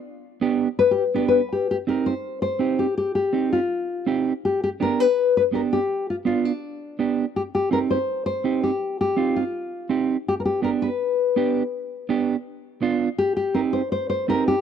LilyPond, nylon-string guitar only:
\new Staff \with { instrumentName = "Nylon-string guitar" } { \time 4/4 \key c \minor \tempo 4 = 164 d''4 r4 \tuplet 3/2 { b'8 g'8 r8 b'8 b'4 } | g'8 g'8 bes'8 c''4 c''4 g'8 | g'8 g'4 f'2 r8 | g'8 g'8 bes'8 b'4 b'8 bes'8 g'8~ |
g'8 f'8 f'8 d'2 r8 | g'8 g'8 bes'8 c''4 c''4 g'8~ | g'8 g'4 f'2 r8 | g'16. bes'32 g'8 bes'8 b'2~ b'8~ |
b'2. r4 | g'8 g'8 bes'8 c''8 c''8 c''8 bes'8 g'8 | }